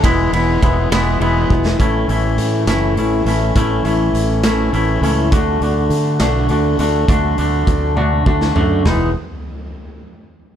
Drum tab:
RD |x-x-x-x-x---|------------|------------|------------|
HH |------------|x-x-x-x-x-x-|x-x-x-x-x-x-|x-x-x-x-x-x-|
SD |------o----o|------o-----|------o-----|------o-----|
T1 |------------|------------|------------|------------|
FT |------------|------------|------------|------------|
BD |o---o-----o-|o-----------|o-----------|o-----------|

RD |------------|------------|
HH |x-x-x-------|------------|
SD |---------o--|o-----------|
T1 |------o-----|------------|
FT |----------o-|o-----------|
BD |o---o---o---|------------|